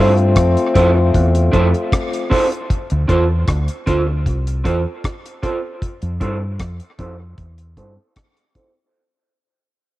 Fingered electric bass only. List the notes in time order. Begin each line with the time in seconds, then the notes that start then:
Already playing: G2
0.37 F2
0.76 F2
1.15 E2
1.54 F2
2.92 D2
3.10 E2
3.48 D2
3.88 D2
4.27 C2
4.66 E2
6.02 F2
6.21 G2
6.60 F2
6.99 F2
7.38 E2
7.78 G2